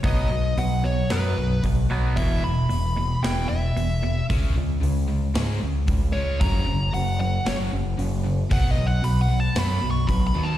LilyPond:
<<
  \new Staff \with { instrumentName = "Lead electric guitar" } { \time 4/4 \key b \dorian \tempo 4 = 113 dis''4 fis''8 cis''8 b'4 r4 | e''8 b''4. g''8 e''4. | r2. r8 cis''8 | ais''4 fis''8 fis''8 cis''8 r4. |
\tuplet 3/2 { fis''8 dis''8 fis''8 b''8 fis''8 a''8 b''4 cis'''8 b''8 b''8 a''8 } | }
  \new Staff \with { instrumentName = "Distorted electric guitar" } { \clef bass \time 4/4 \key b \dorian <b, fis b>8 <b, fis>8 <b, fis>8 <b, fis>8 <b, fis b>8 <b, fis>8 <b, fis>8 <b, fis b>8 | <e, b, e>8 <e, b,>8 <e, b,>8 <e, b,>8 <e, b, e>8 <e, b,>8 <e, b,>8 <e, b,>8 | <cis gis cis'>8 <cis gis>8 <cis gis>8 <cis gis>8 <cis gis cis'>8 <cis gis>8 <cis gis>8 <cis gis cis'>8 | <fis, cis fis>8 <fis, cis>8 <fis, cis>8 <fis, cis>8 <fis, cis fis>8 <fis, cis>8 <fis, cis>8 <fis, cis>8 |
<b, fis b>8 <b, fis>8 <b, fis>8 <b, fis>8 <b, fis b>8 <b, fis>8 <b, fis>8 <b, fis b>8 | }
  \new Staff \with { instrumentName = "Clean electric guitar" } { \clef bass \time 4/4 \key b \dorian <b, fis b>8 <b, fis>8 <b, fis>8 <b, fis>8 <b, fis b>8 <b, fis>8 <b, fis>8 <b, fis b>8 | <e, b, e>8 <e, b,>8 <e, b,>8 <e, b,>8 <e, b, e>8 <e, b,>8 <e, b,>8 <e, b,>8 | r1 | r1 |
r1 | }
  \new Staff \with { instrumentName = "Fingered electric bass" } { \clef bass \time 4/4 \key b \dorian b,,8 b,,8 b,,4 fis,8 b,,8 b,,8 b,,8 | e,,8 e,,8 e,,4 e,,8 e,,8 e,,4 | cis,8 cis,8 cis,4 gis,8 cis,8 cis,8 cis,8 | fis,,8 fis,,8 fis,,4 fis,,8 fis,,8 fis,,4 |
b,,8 b,,8 b,,4 fis,8 b,,8 b,,8 dis,8 | }
  \new DrumStaff \with { instrumentName = "Drums" } \drummode { \time 4/4 <hho bd>4 hho4 <hho sn>4 <hho bd>4 | <hho bd>4 hho4 <hho sn>4 hho4 | <hho bd>4 hho4 <hho sn>4 <hho bd>4 | <hho bd>4 hho4 <hho sn>4 hho4 |
<hho bd>4 hho4 <hho sn>4 <hho bd>4 | }
>>